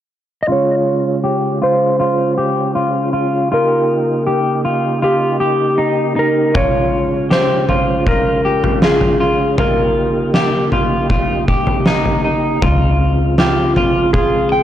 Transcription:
0.43 0.49 D#5 medium
0.47 12.59 C#3 soft
0.47 3.48 G#3 medium
0.47 3.48 C#4 medium
0.47 3.48 F4 medium
0.47 1.23 F4 medium
0.52 1.63 C#5 medium
1.24 1.61 G4 medium
1.62 1.98 F4 medium
1.62 3.48 C5 medium
2.00 2.37 F4 medium
2.38 2.75 G4 medium
2.75 3.12 F4 medium
3.13 3.51 F4 medium
3.51 6.52 A#3 medium
3.51 6.52 D#4 soft
3.51 4.26 F4 medium
3.51 6.52 G4 medium
3.51 5.09 A#4 medium
4.27 4.64 G4 medium
4.65 5.01 F4 medium
5.02 5.40 F4 medium
5.02 6.19 G4 medium
5.40 5.79 G4 medium
5.78 6.15 D#4 medium
6.16 6.55 D#4 medium
6.16 6.57 A#4 medium
6.54 9.57 G#3 medium
6.54 9.57 C#4 soft
6.54 7.30 F4 medium
6.54 9.57 F4 medium
6.54 7.32 C#5 medium
6.54 kick loud
6.54 floor tom medium
7.30 7.69 G4 medium
7.30 8.10 C5 medium
7.30 snare medium
7.69 8.06 F4 medium
7.69 floor tom medium
8.07 8.44 F4 medium
8.07 8.84 A#4 medium
8.07 kick medium
8.07 floor tom medium
8.45 8.82 G4 medium
8.64 floor tom medium
8.82 9.19 F4 medium
8.82 9.62 G#4 medium
8.82 snare medium
9.01 floor tom medium
9.20 9.58 F4 medium
9.58 12.60 A#3 medium
9.58 12.60 D#4 medium
9.58 10.34 F4 medium
9.58 12.60 G4 medium
9.58 11.07 A#4 medium
9.58 floor tom loud
10.34 10.72 G4 medium
10.34 snare medium
10.72 11.10 F4 medium
10.72 floor tom medium
11.10 11.48 F4 medium
11.10 kick medium
11.10 floor tom medium
11.48 11.87 G4 medium
11.48 kick medium
11.67 floor tom medium
11.86 12.23 D#4 medium
11.86 snare medium
12.05 floor tom medium
12.24 12.63 D#4 medium
12.62 14.63 C#2 medium
12.62 14.63 C#3 medium
12.62 14.63 G#3 medium
12.62 14.63 C4 medium
12.62 14.63 F4 medium
12.62 13.38 F4 medium
12.62 kick loud
12.62 floor tom loud
13.38 14.17 F4 medium
13.38 13.76 G4 medium
13.38 snare medium
13.76 14.13 F4 medium
13.76 floor tom medium
14.13 14.52 F4 medium
14.13 14.63 G#4 medium
14.13 kick medium
14.13 floor tom medium
14.52 14.63 G5 medium

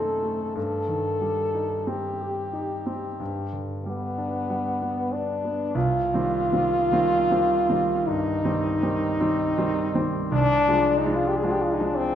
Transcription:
0.00 0.52 F#2 soft
0.00 0.59 C3 soft
0.00 0.58 D#3 soft
0.00 0.23 A3 soft
0.00 0.59 C4 soft
0.00 0.11 D#4 soft
0.00 0.56 A4 medium
0.23 0.56 A3 soft
0.55 3.16 G2 soft
0.55 1.90 A4 medium
0.88 1.41 D#3 soft
1.21 1.74 G3 soft
1.55 2.08 D#4 soft
1.87 2.40 C4 soft
1.87 3.68 G4 soft
2.21 2.74 G4 soft
2.53 3.07 D#4 soft
2.86 3.20 C4 soft
3.20 5.71 G2 soft
3.53 4.05 D3 soft
3.85 4.37 G3 soft
3.85 5.15 B3 medium
4.18 4.69 D4 soft
4.50 5.01 G3 soft
4.82 5.33 B3 soft
5.13 5.77 D4 medium
5.13 5.63 D4 soft
5.45 5.75 B3 soft
5.75 6.13 C2 medium
5.75 8.09 F4 medium
6.13 6.49 D#3 soft
6.13 6.49 G3 soft
6.13 6.49 C4 soft
6.52 6.88 D#3 soft
6.52 6.88 G3 soft
6.52 6.88 C4 soft
6.92 7.27 D#3 soft
6.92 7.27 G3 soft
6.92 7.28 C4 medium
7.31 7.65 D#3 soft
7.31 7.65 G3 soft
7.31 7.66 C4 soft
7.69 8.03 D#3 soft
7.69 8.04 G3 soft
7.69 8.04 C4 soft
8.07 8.44 G2 medium
8.07 10.15 D#4 medium
8.44 8.78 D#3 soft
8.44 8.78 G3 soft
8.44 8.79 C4 medium
8.83 9.17 D#3 medium
8.83 9.17 G3 soft
8.83 9.17 C4 medium
9.20 9.54 D#3 medium
9.20 9.54 G3 soft
9.20 9.54 C4 medium
9.58 9.91 D#3 medium
9.58 9.92 G3 medium
9.58 9.92 C4 medium
9.94 10.28 D#3 soft
9.94 10.28 G3 soft
9.94 10.28 C4 medium
10.32 10.67 C2 medium
10.32 10.99 D4 loud
10.68 11.01 F3 medium
10.68 11.01 G#3 medium
10.68 11.01 D4 medium
10.98 11.17 D#4 medium
11.05 11.38 F3 medium
11.05 11.39 G#3 medium
11.05 11.39 D4 medium
11.15 11.30 F4 medium
11.28 11.38 G4 medium
11.37 11.47 G#4 medium
11.43 11.76 F3 medium
11.43 11.76 G#3 medium
11.43 11.77 D4 medium
11.43 11.54 F4 medium
11.53 11.64 G4 medium
11.62 11.75 F4 medium
11.73 11.86 D#4 medium
11.79 12.13 F3 soft
11.79 12.14 G#3 soft
11.79 12.14 D4 medium
11.84 11.98 D4 medium
11.96 12.15 C4 medium

